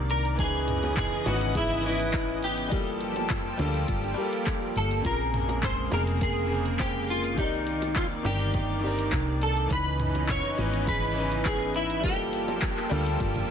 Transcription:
Already playing: fingered electric bass C2, analog synth pad D#3 A#3 D5, grand piano D#3 C4 D4 A#4 D5
0.10 clean electric guitar A#4, closed hi-hat
0.25 closed hi-hat, shaker
0.35 fingered electric bass C#2, analog synth pad C#3 E3 B3 D#5, grand piano E3 C#4, synth arpeggio sound D#4, kick, closed hi-hat, shaker
0.40 grand piano D#4 B4, clean electric guitar G#4
0.54 shaker
0.68 closed hi-hat, mid tom
0.83 closed hi-hat, high bongo, shaker
0.97 clean electric guitar G#4, kick, clap, closed hi-hat, mid tom, shaker
1.12 shaker
1.24 fingered electric bass G#1, grand piano E3 C#4 D#4 B4, synth arpeggio sound E4, clean electric guitar F#4, closed hi-hat, high bongo
1.41 closed hi-hat, shaker
1.55 clean electric guitar E4, synth arpeggio sound G#4, kick, closed hi-hat, shaker
1.71 shaker
1.81 grand piano E3 C#4
1.86 clean electric guitar E4, grand piano B4 D#5
2.00 closed hi-hat, shaker
2.13 synth arpeggio sound B4, kick, clap, closed hi-hat, shaker
2.29 shaker
2.42 clean electric guitar G4, closed hi-hat
2.58 closed hi-hat, shaker
2.68 fingered electric bass G1, analog synth pad F3 A#3 G4 A4, grand piano G3 A#3, synth arpeggio sound G4, kick, closed hi-hat, shaker
2.73 grand piano F4 A4
2.87 shaker
3.01 closed hi-hat
3.16 closed hi-hat, high bongo, shaker
3.30 synth arpeggio sound F4, kick, clap, closed hi-hat, mid tom, shaker
3.45 shaker
3.57 fingered electric bass D2, grand piano G3 A#3 F4 A4, synth arpeggio sound D4, closed hi-hat, high bongo
3.74 closed hi-hat, shaker
3.88 fingered electric bass G1, synth arpeggio sound F4, kick, closed hi-hat, shaker
4.04 shaker
4.14 grand piano G3 A#3, synth arpeggio sound G4
4.19 grand piano F4 A4
4.33 closed hi-hat, shaker
4.47 synth arpeggio sound A4, kick, clap, closed hi-hat, shaker
4.62 shaker
4.76 fingered electric bass G1, clean electric guitar A4, closed hi-hat
4.91 closed hi-hat, shaker
5.01 fingered electric bass A#1, grand piano C#3 A#3, analog synth pad G#3, synth arpeggio sound F4, kick, closed hi-hat, shaker
5.06 grand piano C4 G#4, clean electric guitar A#4
5.20 shaker
5.34 closed hi-hat, mid tom
5.49 closed hi-hat, high bongo, shaker
5.63 clean electric guitar C5, kick, clap, closed hi-hat, mid tom, shaker
5.78 shaker
5.90 fingered electric bass F1, grand piano C#3 A#3 C4 G#4, synth arpeggio sound G#4, clean electric guitar A#4, closed hi-hat, high bongo
6.07 closed hi-hat, shaker
6.21 clean electric guitar G#4, synth arpeggio sound A#4, kick, closed hi-hat, shaker
6.36 shaker
6.47 grand piano C#3 A#3
6.51 grand piano C4 G#4
6.66 closed hi-hat, shaker
6.79 clean electric guitar G4, synth arpeggio sound C5, kick, clap, closed hi-hat, shaker
6.95 shaker
7.09 clean electric guitar F4, closed hi-hat
7.24 closed hi-hat, shaker
7.34 fingered electric bass C2, grand piano D#3 C4, analog synth pad D#3 D5, synth arpeggio sound G4, kick, closed hi-hat, shaker
7.39 clean electric guitar D#4, grand piano A#4 D5
7.53 shaker
7.67 closed hi-hat
7.82 closed hi-hat, high bongo, shaker
7.96 synth arpeggio sound D#4, clean electric guitar F4, kick, clap, closed hi-hat, shaker
8.11 shaker
8.23 fingered electric bass G1, grand piano D#3 C4 D4 A#4, synth arpeggio sound D4, clean electric guitar G4, closed hi-hat, high bongo
8.40 closed hi-hat, shaker
8.54 synth arpeggio sound D#4, kick, closed hi-hat, shaker
8.69 shaker
8.79 grand piano D#3 C4
8.83 grand piano D4 A#4, synth arpeggio sound G4
8.99 closed hi-hat, shaker
9.12 fingered electric bass C2, synth arpeggio sound A#4, kick, clap, closed hi-hat, shaker
9.28 shaker
9.41 clean electric guitar A4, closed hi-hat
9.57 closed hi-hat, shaker
9.67 fingered electric bass C#2, analog synth pad C#3 E3 B3 D#4, grand piano E3 C#4, kick, closed hi-hat, shaker
9.71 synth arpeggio sound D#4, grand piano D#4 B4, clean electric guitar B4
9.86 shaker
10.00 closed hi-hat, mid tom
10.15 closed hi-hat, high bongo, shaker
10.29 clean electric guitar C#5, kick, clap, closed hi-hat, mid tom, shaker
10.44 shaker
10.56 fingered electric bass G#1, grand piano E3 C#4 D#4 B4, synth arpeggio sound E4, closed hi-hat, high bongo
10.73 closed hi-hat, shaker
10.87 synth arpeggio sound G#4, clean electric guitar B4, kick, closed hi-hat, shaker
11.03 shaker
11.13 grand piano E3 C#4
11.17 grand piano D#4 B4
11.32 closed hi-hat, shaker
11.45 clean electric guitar G#4, synth arpeggio sound B4, kick, clap, closed hi-hat, shaker
11.61 shaker
11.75 clean electric guitar E4, closed hi-hat
11.90 closed hi-hat, shaker
12.00 fingered electric bass G1, analog synth pad F3 A#3 G4 A4, grand piano G3 A#3, synth arpeggio sound G4, kick, closed hi-hat, shaker
12.04 grand piano F4 A4, clean electric guitar G4
12.19 shaker
12.33 closed hi-hat
12.48 closed hi-hat, high bongo, shaker
12.62 synth arpeggio sound F4, kick, clap, closed hi-hat, shaker
12.77 clap, shaker
12.90 fingered electric bass D2, grand piano G3 A#3 F4 A4, synth arpeggio sound D4, closed hi-hat, high bongo
13.06 closed hi-hat, shaker
13.20 fingered electric bass G1, synth arpeggio sound F4, kick, closed hi-hat, shaker
13.36 mid tom, shaker

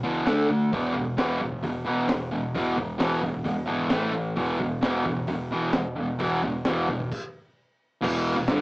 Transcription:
0.03 picked electric bass C#2, distorted electric guitar E2 B2 E3
0.26 picked electric bass D2, distorted electric guitar D3 A3 D4, snare, open hi-hat
0.49 distorted electric guitar D3 A3
0.72 picked electric bass E1, distorted electric guitar E2 B2 E3, kick, open hi-hat
0.93 picked electric bass E1, distorted electric guitar E2 B2, kick
1.17 picked electric bass E1, distorted electric guitar E2 B2 E3, snare, open hi-hat
1.40 distorted electric guitar E2 B2, kick
1.52 kick
1.63 picked electric bass E1, distorted electric guitar E2 B2, kick, open hi-hat
1.85 picked electric bass B1, distorted electric guitar E2 B2 E3
2.09 picked electric bass E1, distorted electric guitar E2 B2, snare, open hi-hat
2.31 distorted electric guitar E2 B2
2.55 picked electric bass E1, distorted electric guitar E2 B2 E3, kick, open hi-hat
2.77 picked electric bass E1, distorted electric guitar E2 B2, kick
2.98 picked electric bass E1, distorted electric guitar E2 B2 E3, snare, open hi-hat
3.22 picked electric bass E1, distorted electric guitar E2 B2, kick
3.34 kick
3.44 picked electric bass E1, distorted electric guitar E2 B2, kick, open hi-hat
3.66 picked electric bass G#1, distorted electric guitar E2 B2 E3
3.90 picked electric bass A1, distorted electric guitar A2 E3 A3, snare, open hi-hat
4.12 distorted electric guitar A2 E3
4.36 picked electric bass E1, distorted electric guitar E2 B2 E3, kick, open hi-hat
4.58 picked electric bass E1, distorted electric guitar E2 B2, kick
4.82 picked electric bass E1, distorted electric guitar E2 B2 E3, snare, open hi-hat
5.06 distorted electric guitar E2 B2, kick
5.17 kick
5.27 picked electric bass E1, distorted electric guitar E2 B2, kick, open hi-hat
5.51 picked electric bass B1, distorted electric guitar E2 B2 E3
5.73 picked electric bass E1, distorted electric guitar E2 B2, snare, open hi-hat
5.96 distorted electric guitar E2 B2
6.19 picked electric bass E1, distorted electric guitar E2 B2 E3, kick, open hi-hat
6.43 picked electric bass E1, distorted electric guitar E2 B2, kick
6.65 picked electric bass E1, distorted electric guitar E2 B2 E3, snare, open hi-hat
6.88 distorted electric guitar E2 B2, picked electric bass E2, kick
7.00 kick
7.12 kick, crash
8.01 picked electric bass E1, distorted electric guitar E2 B2 E3, kick, crash
8.26 open hi-hat
8.36 picked electric bass E1, distorted electric guitar E2 B2
8.47 picked electric bass G1, distorted electric guitar G2 D3, snare, open hi-hat

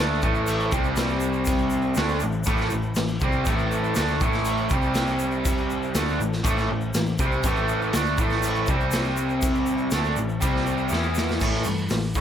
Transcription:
Already playing: overdriven electric guitar D3
0.00 picked electric bass D2, overdriven electric guitar A3 D4
0.22 picked electric bass A1, overdriven electric guitar A2 E3 A3, kick, shaker
0.35 shaker
0.47 crash, shaker
0.60 shaker
0.72 picked electric bass C2, overdriven electric guitar C3 G3 C4, kick, shaker
0.84 shaker
0.96 snare, crash, shaker
1.09 shaker
1.20 shaker
1.33 shaker
1.45 kick, crash, shaker
1.58 shaker
1.70 shaker
1.82 shaker
1.95 picked electric bass D2, overdriven electric guitar D3 A3 D4, snare, crash, shaker
2.08 shaker
2.20 picked electric bass A1, overdriven electric guitar A2 E3, shaker
2.32 shaker
2.44 picked electric bass A1, overdriven electric guitar A2, kick, crash, shaker
2.48 overdriven electric guitar E3 A3
2.58 snare, shaker
2.70 picked electric bass A1, overdriven electric guitar A2 E3, shaker
2.83 shaker
2.95 picked electric bass A1, overdriven electric guitar A2 E3, snare, crash, shaker
3.08 shaker
3.20 picked electric bass C2, overdriven electric guitar C3 G3 C4, kick, shaker
3.32 shaker
3.45 picked electric bass A1, overdriven electric guitar A2 E3 A3, kick, crash, shaker
3.59 shaker
3.72 shaker
3.84 shaker
3.95 picked electric bass D2, overdriven electric guitar D3 A3 D4, snare, crash, shaker
4.08 shaker
4.21 picked electric bass A1, overdriven electric guitar A2 E3 A3, kick, shaker
4.32 snare, shaker
4.45 crash, shaker
4.57 shaker
4.69 picked electric bass C2, overdriven electric guitar C3 G3 C4, kick, shaker
4.82 shaker
4.94 snare, crash, shaker
5.07 shaker
5.19 shaker
5.31 shaker
5.45 kick, crash, shaker
5.58 shaker
5.70 shaker
5.83 shaker
5.95 picked electric bass D2, overdriven electric guitar D3 A3 D4, snare, crash, shaker
6.08 shaker
6.19 picked electric bass A1, overdriven electric guitar A2 E3, shaker
6.33 snare, shaker
6.44 picked electric bass A1, overdriven electric guitar A2 E3 A3, kick, crash, shaker
6.57 snare, shaker
6.71 picked electric bass A1, overdriven electric guitar A2 E3
6.81 shaker
6.94 picked electric bass A1, overdriven electric guitar A2 E3, snare, crash, shaker
7.07 shaker
7.18 picked electric bass C2, overdriven electric guitar C3 G3 C4, kick, shaker
7.32 shaker
7.43 picked electric bass A1, overdriven electric guitar A2 E3, kick, crash, shaker
7.47 overdriven electric guitar A3
7.57 shaker
7.68 shaker
7.82 shaker
7.93 picked electric bass D2, overdriven electric guitar D3 A3 D4, snare, crash, shaker
8.06 shaker
8.18 picked electric bass A1, overdriven electric guitar A2 E3 A3, kick, shaker
8.30 snare, shaker
8.43 crash, shaker
8.55 shaker
8.67 picked electric bass C2, overdriven electric guitar C3 G3, kick, shaker
8.71 overdriven electric guitar C4
8.80 shaker
8.91 snare, crash, shaker
9.04 shaker
9.17 shaker
9.29 shaker
9.42 kick, crash, shaker
9.55 shaker
9.66 shaker
9.78 shaker
9.91 picked electric bass D2, overdriven electric guitar D3 A3 D4, snare, crash, shaker
10.04 shaker
10.16 picked electric bass A1, overdriven electric guitar A2 E3, shaker
10.29 shaker
10.41 picked electric bass C2, overdriven electric guitar C3 G3 C4, kick, crash, shaker
10.56 snare
10.66 shaker
10.78 shaker
10.89 picked electric bass E2, overdriven electric guitar E3 B3 E4, shaker
10.93 snare
11.03 shaker
11.15 snare, shaker
11.28 snare, shaker
11.40 picked electric bass A1, overdriven electric guitar A2 E3 A3, kick, crash, shaker
11.55 snare
11.64 picked electric bass G2, overdriven electric guitar A2 E3, open hi-hat, shaker
11.78 shaker
11.89 picked electric bass A1, overdriven electric guitar A2 E3, snare, open hi-hat, shaker
12.14 overdriven electric guitar A2 E3 A3, kick, open hi-hat, shaker

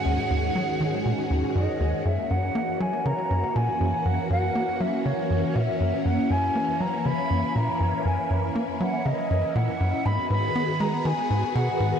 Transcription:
Already playing: string machine G#2 D#3 C#4 F#4 G#4, synth texture G#4 G#5, flute F#5
0.06 analog synth bass D#2
0.30 analog synth bass D#2
0.55 analog synth bass F#3
0.81 analog synth bass D#3
1.05 analog synth bass A#2
1.30 analog synth bass D#2
1.55 analog synth bass F#2, flute D#5
1.80 analog synth bass D#2
2.05 analog synth bass F#2, string machine E3 A#3 C#4 F#4, flute E5
2.30 analog synth bass F#2, flute F#5
2.55 analog synth bass A#3
2.80 analog synth bass F#3, flute G#5
3.05 analog synth bass C#3, flute A#5
3.31 analog synth bass F#2
3.56 analog synth bass A#2, flute G#5
3.81 analog synth bass F#2
4.05 analog synth bass F#2, flute F#5
4.30 analog synth bass F#2, flute F#5
4.55 analog synth bass A#3
4.80 analog synth bass F#3, flute E5
5.06 analog synth bass C#3, flute C#5
5.30 analog synth bass F#2
5.56 analog synth bass A#2, flute F#5
5.60 flute E5
5.80 analog synth bass F#2
6.05 analog synth bass F#2, string machine E4, flute F#5
6.30 analog synth bass F#2, flute G#5
6.55 analog synth bass A#3
6.80 analog synth bass F#3, flute A#5
7.05 analog synth bass C#3, flute B5
7.30 analog synth bass F#2
7.56 analog synth bass A#2, flute A#5
7.80 analog synth bass F#2
8.05 analog synth bass F#2, flute G#5
8.30 analog synth bass F#2
8.55 analog synth bass A#3
8.80 analog synth bass F#3, flute F#5
9.06 analog synth bass C#3, flute D#5
9.31 analog synth bass F#2
9.55 analog synth bass A#2, flute F#5
9.80 analog synth bass F#2
10.05 analog synth bass G#2, string machine D#3 B3 F#4 G#4, flute B5
10.30 analog synth bass G#2, flute B5
10.56 analog synth bass B3
10.80 analog synth bass G#3, flute A#5
11.05 analog synth bass D#3, flute G#5
11.30 analog synth bass G#2
11.55 analog synth bass B2, flute F#5
11.80 analog synth bass G#2

